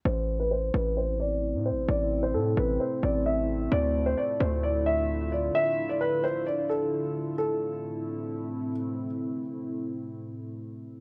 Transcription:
<<
  \new Staff \with { instrumentName = "Grand piano" } { \time 4/4 \key a \minor \tempo 4 = 131 c''8. b'16 c''8 b'8 c''8 d''4 c''8 | d''8. c''16 a'8 b'8 c''8 d''8 e''4 | d''8. c''16 d''8 c''8 d''8 e''4 d''8 | e''8. d''16 b'8 c''8 d''8 a'4. |
a'2. r4 | r1 | }
  \new Staff \with { instrumentName = "Ambient pad" } { \time 4/4 \key a \minor << { <c' e'>1~ | <c' e'>1 | <d e' f'>1~ | <d e' f'>1 |
<a, a c' e'>1~ | <a, a c' e'>1 | } \\ { a1~ | a1~ | a1~ | a1 |
r1 | r1 | } >> }
  \new Staff \with { instrumentName = "808-style bass" } { \clef bass \time 4/4 \key a \minor a,,4. a,,4.~ a,,16 a,16. a,,16. | a,,4 a,8 a,,8 r8 a,,4. | d,4 r8 d,2~ d,8 | r1 |
r1 | r1 | }
>>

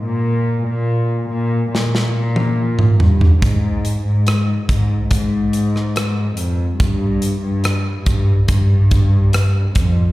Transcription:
<<
  \new Staff \with { instrumentName = "Cello section" } { \clef bass \time 4/4 \key f \dorian \tempo 4 = 71 bes,8. bes,8. bes,8 bes,4. g,8 | aes,8. aes,8. aes,8 aes,4. f,8 | g,8. g,8. g,8 g,4. f,8 | }
  \new DrumStaff \with { instrumentName = "Drums" } \drummode { \time 4/4 r4 r4 sn16 sn8 tommh16 r16 toml16 tomfh16 tomfh16 | <hh bd>8 hh8 <hh ss>8 <hh bd>8 <hh bd>8 hh16 ss16 <hh ss>8 hh8 | <hh bd>8 hh8 <hh ss>8 <hh bd>8 <hh bd>8 <hh bd>8 <hh ss>8 <hh bd>8 | }
>>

